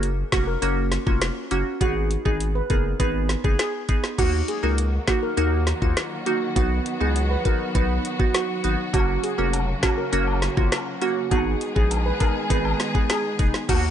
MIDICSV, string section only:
0, 0, Header, 1, 2, 480
1, 0, Start_track
1, 0, Tempo, 594059
1, 1462, Time_signature, 4, 2, 24, 8
1, 11234, End_track
2, 0, Start_track
2, 0, Title_t, "String section"
2, 0, Program_c, 0, 48
2, 3383, Note_on_c, 0, 51, 79
2, 3383, Note_on_c, 0, 54, 75
2, 3383, Note_on_c, 0, 58, 76
2, 3383, Note_on_c, 0, 66, 89
2, 5284, Note_off_c, 0, 58, 0
2, 5302, Note_on_c, 0, 59, 77
2, 7190, Note_off_c, 0, 51, 0
2, 7203, Note_off_c, 0, 59, 0
2, 7223, Note_on_c, 0, 49, 88
2, 7223, Note_on_c, 0, 58, 77
2, 9110, Note_off_c, 0, 54, 0
2, 9110, Note_off_c, 0, 66, 0
2, 9124, Note_off_c, 0, 49, 0
2, 9124, Note_off_c, 0, 58, 0
2, 9143, Note_on_c, 0, 51, 89
2, 9143, Note_on_c, 0, 56, 77
2, 9143, Note_on_c, 0, 59, 76
2, 9143, Note_on_c, 0, 68, 93
2, 11044, Note_off_c, 0, 51, 0
2, 11044, Note_off_c, 0, 56, 0
2, 11044, Note_off_c, 0, 59, 0
2, 11044, Note_off_c, 0, 68, 0
2, 11063, Note_on_c, 0, 51, 87
2, 11063, Note_on_c, 0, 54, 76
2, 11063, Note_on_c, 0, 58, 78
2, 11063, Note_on_c, 0, 66, 91
2, 11234, Note_off_c, 0, 51, 0
2, 11234, Note_off_c, 0, 54, 0
2, 11234, Note_off_c, 0, 58, 0
2, 11234, Note_off_c, 0, 66, 0
2, 11234, End_track
0, 0, End_of_file